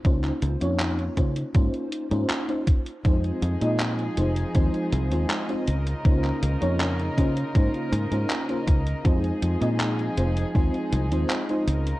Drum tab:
HH |xxxxxxxxxxxxxxxx|xxxxxxxxxxxxxxxx|xxxxxxxxxxxxxxxx|xxxxxxxxxxxxxxxx|
CP |-x--x-------x---|----x-------x---|-x--x-------x---|----x-------x---|
BD |o-----o-o-----o-|o-------o-------|o-----o-o-----o-|o-------o-------|